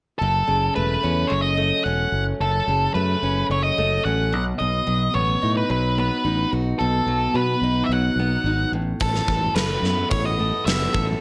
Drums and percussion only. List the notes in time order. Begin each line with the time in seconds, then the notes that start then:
9.00 kick, open hi-hat
9.15 snare
9.28 kick
9.56 snare, open hi-hat
9.84 snare
10.11 kick, open hi-hat
10.67 snare, open hi-hat
10.94 kick